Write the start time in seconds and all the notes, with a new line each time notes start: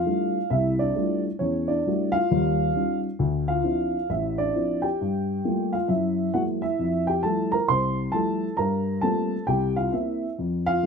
Already playing: F5
0.05 G3 A3 D4 E4 F4
0.50 C2 E4 E5
0.79 D4 D5
0.95 G3 A3 D4 E4 F4
1.39 E2 C#4 C#5
1.68 D4 D5
1.86 G3 A3 D4 E4 F#4
2.12 F4 F5
2.31 D#2 G3
2.75 G3 C#4 D#4 F4
3.19 D2
3.48 F4 F5
3.63 F3 C4 D4 E4
4.10 A1 E4 E5
4.38 D4 D5
4.55 F3 C4 D4 E4
4.82 G4 G5
5.01 G2
5.45 G3 A3 A#3 F4
5.73 F4 F5
5.88 F#2 E4 E5
6.34 F#3 G#3 A#3 E4 F#4 F#5
6.62 E4 E5
6.79 F2
7.07 G4 G5
7.23 F3 G3 A3 E4 A4 A5
7.52 A#4 A#5
7.68 C2 C5 C6
8.12 F3 G3 A3 E4 A4 A5
8.57 G2 A#4 A#5
9.01 G3 A3 A#3 C4 F4 A4 A5
9.47 C2 G4 G5
9.76 F4 F5
9.92 A#3 C4 E4 E5
10.39 F2
10.66 F4 F5
10.83 F3 G3